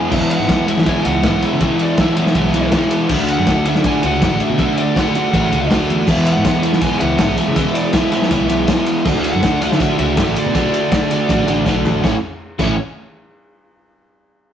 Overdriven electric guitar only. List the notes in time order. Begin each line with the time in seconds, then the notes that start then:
Already playing: B3 E4 G#4
0.10 E3 G#3 B3 E4
0.48 E3 G#3 B3 E4
0.66 G#3 B3 E4
0.85 E3 G#3 B3 E4
1.04 G#3 B3 E4
1.22 E3 G#3 B3 E4
1.60 E3 G#3 B3 E4
1.98 E3 G#3 B3 E4
2.17 G#3 B3 E4
2.35 E3 G#3 B3 E4
2.54 G#3 B3 E4
2.73 E3 G#3 B3 E4
3.10 D3 A3 D4 F#4
3.47 D3 A3 D4 F#4
3.66 A3 D4 F#4
3.84 D3 A3 D4 F#4
4.03 A3 D4 F#4
4.22 D3 A3 D4 F#4
4.58 D3 A3 D4 F#4
4.95 D3 A3 D4 F#4
5.14 A3 D4 F#4
5.32 D3 A3 D4 F#4
5.50 A3 D4 F#4
5.69 D3 A3 D4 F#4
6.06 E3 G#3 B3 E4
6.43 E3 G#3 B3 E4
6.62 G#3 B3 E4
6.81 E3 G#3 B3 E4
7.00 G#3 B3 E4
7.18 E3 G#3 B3 E4
7.55 E3 G#3 B3 E4
7.93 E3 G#3 B3 E4
8.12 G#3 B3 E4
8.29 E3 G#3 B3 E4
8.49 G#3 B3 E4
8.67 E3 G#3 B3 E4
9.04 D3 A3 D4 F#4
9.43 D3 A3 D4 F#4
9.61 A3 D4 F#4
9.79 D3 A3 D4 F#4
9.98 A3 D4 F#4
10.16 D3 A3 D4 F#4
10.54 D3 A3 D4 F#4
10.91 D3 A3 D4 F#4
11.10 A3 D4 F#4
11.29 D3 A3 D4 F#4
11.47 A3 D4 F#4
11.66 D3 A3 D4 F#4
12.03 A2 E3 A3 C#4 E4
12.59 A2 E3 A3 C#4 E4